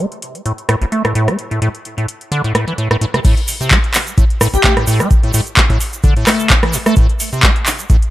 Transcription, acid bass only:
0.46 A2
0.69 A2
0.81 A1
0.92 A3
1.05 A2
1.15 A2
1.28 A3
1.51 A2
1.62 A2
1.98 A2
2.32 D3
2.44 A2
2.55 A2
2.68 E3
2.78 A2
2.91 A2
3.01 A2
3.14 C3
3.25 A2
3.61 C3
3.71 A3
4.18 A2
4.41 A2
4.54 A1
4.64 A3
4.77 A2
4.87 A2
5.00 A3
5.23 A2
5.34 A2
5.70 A2
6.04 D3
6.16 A2
6.27 A3
6.50 E3
6.63 E3
6.74 A2
6.86 A3
6.97 A2
7.33 C3
7.43 A3
7.90 A2

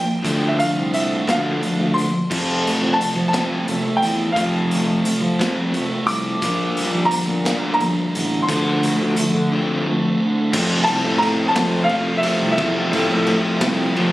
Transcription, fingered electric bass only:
0.25 D2
0.76 C2
1.28 D2
1.80 D2
2.32 F2
2.83 F2
3.16 F3
3.68 F2
4.03 E2
4.36 F2
4.87 F2
5.21 F3
5.72 F2
6.06 C2
6.43 A#1
6.93 A#1
7.29 A#2
7.80 A#1
8.15 A1
8.49 D2
9.02 D2
9.34 D3
10.54 F2
10.89 C2
11.05 A2
11.56 F2
12.42 C2
12.58 E2
12.92 A2
13.12 A2
13.61 C2
13.98 F3

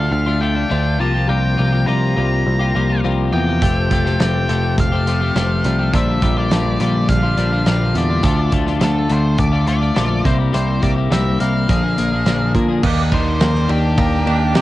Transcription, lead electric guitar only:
Already playing: F5
0.13 F5
0.41 G5
1.00 A5
1.29 G5
1.87 A#5
3.33 G5
4.20 G5
4.80 F5
5.96 E5
6.38 D5
6.81 D5
7.09 F5
7.68 F5
7.98 D5
8.84 A4
9.12 C5
9.40 D5
9.68 D5
10.26 C5
10.55 C5
10.83 D5
11.12 E5
11.40 F5
13.14 C5
13.71 G4
14.56 G4

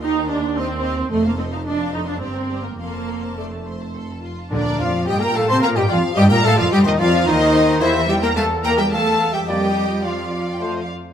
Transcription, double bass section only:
Already playing: D#2
1.11 F1
2.21 G1
2.79 F1
4.52 D2
4.81 F2
5.08 G2
5.22 A#2
5.36 A2
5.50 C3
5.64 A#2
5.77 G2
5.90 F2
6.18 G2
6.31 A#2
6.45 A2
6.60 F2
6.73 G2
6.87 D#2
7.00 F2
7.28 D#2
7.82 E2
9.48 F2

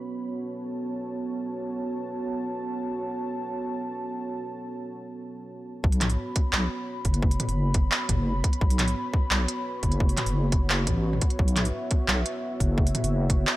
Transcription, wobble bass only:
5.84 B1
6.53 B1
7.05 F#1
7.48 F#1
8.09 F#1
8.61 B1
9.31 B1
9.83 F#1
10.26 F#1
10.87 A1
11.39 B1
12.08 B1
12.60 F#1
13.04 F#1

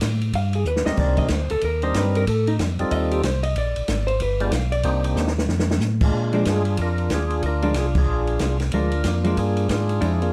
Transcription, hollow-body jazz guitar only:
0.35 F5
0.55 G#4
0.67 B4
0.86 D#5
1.00 D5
1.18 D#5
1.31 C5
1.51 A4
1.65 A#4
1.83 C5
1.97 B4
2.17 A#4
2.28 A4
2.48 D#4
2.92 D#5
3.12 G4
3.25 C5
3.43 D#5
3.58 D5
4.07 C5
4.22 B4
4.41 D5
4.53 F5
4.72 D5
6.33 F3 G#3 D4
7.63 F3 G#3 D4
8.74 F3 G#3 D4
9.24 F3 G#3 D4
10.01 F3 G#3 D4

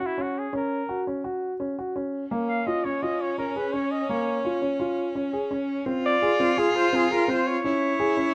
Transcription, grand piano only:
0.00 F#4
0.18 C#4
0.53 C#4
0.89 F#4
1.07 C#4
1.24 F#4
1.60 C#4
1.79 F#4
1.96 C#4
2.31 A#3
2.67 F4
2.85 C#4
3.03 F4
3.38 C#4
3.56 G#4
3.74 C#4
4.09 A#3
4.45 F4
4.62 C#4
4.80 F4
5.15 C#4
5.33 G#4
5.51 C#4
5.86 C4
6.22 G#4
6.40 C4
6.57 G#4
6.93 C4
7.11 G#4
7.28 C4
7.64 C#4
7.99 G#4
8.17 C#4

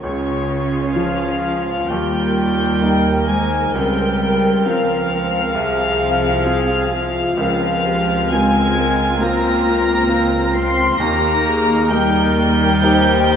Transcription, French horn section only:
1.93 G4
2.86 A#4
3.29 C5
3.77 A#4
5.56 G#4
6.47 G#4
6.92 F4
7.38 A#4
7.84 G4
8.30 F4
8.76 A#4
9.22 F4
10.98 G4
11.46 G#4
11.90 A#4
12.83 C5

